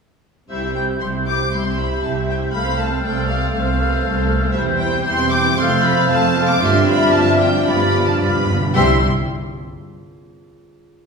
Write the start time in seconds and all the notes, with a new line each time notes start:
0.48 C2 G3 C4 E4 G4 C5 E5 G6
0.62 C4 E4
0.74 E4 G4 G5
0.88 C4 E4
1.00 C2 E4 G4 C5 C6 G6
1.13 C4 E4
1.25 E4 G4 D6
1.40 C4 E4
1.51 C2 E4 G4 C5 E5 C6 G6
1.65 C4 E4
1.77 E4 G4 B5
1.91 C4 E4
2.02 C2 E4 G4 A5
2.15 C4 E4
2.28 E4 G4 G5
2.40 C4 E4
2.53 C2 A3 A4 C5 F5 B5 F6
2.66 C4 C5
2.78 A3 A4 A5
2.89 C4 C5
3.03 C2 A3 A4 D5 G5
3.14 C4 C5
3.27 A3 A4 F5
3.40 C4 C5
3.52 C2 A3 A4 C5 F5 F6
3.65 C4 C5
3.78 A3 A4 B4
3.90 C4 C5
4.03 C2 A3 A4
4.15 C4 C5
4.28 A3 A4
4.41 C4 C5
4.52 E1 E2 G3 C4 E4 G4 C5 E5 G6
4.66 C4 E4
4.78 E4 G4 G5
4.93 C4 E4
5.04 E1 E2 E4 G4 C5 G5 C6 G6
5.19 C4 E4
5.30 E4 G4 D6
5.45 C4 E4
5.57 F1 F2 A3 C4 F4 A4 C5 F5 C6 F6
5.70 A3 A4
5.83 C4 F4 B5
5.96 A3 A4
6.08 F1 F2 C4 F4 A4 C5 A5 F6
6.22 A3 A4
6.35 C4 F4
6.48 A3 A4 D6
6.60 G1 G2 F3 C4 D4 F4 G4 D5 E5 C6 F6
6.74 D4 G4
6.87 C4 F4 B5
7.01 D4 G4
7.12 G1 G2 C4 F4 A5
7.28 D4 G4
7.39 C4 F4 G5
7.55 D4 G4
7.65 G1 G2 B3 F4 G4 D5 B5 F6
7.69 D5
7.81 D4 G4
7.90 G2
7.95 G2 B3 F4
8.05 G2 D4 G4 A5
8.13 G2
8.19 G1 G2 B3 F4 G4 B4 D5 B5 F6
8.29 G2
8.35 G2 D4 G4
8.45 G2
8.49 B3 F4
8.53 G2
8.61 G2 D4 G4
8.74 C2 C3 G3 E4 G4 E5 G5 C6 E6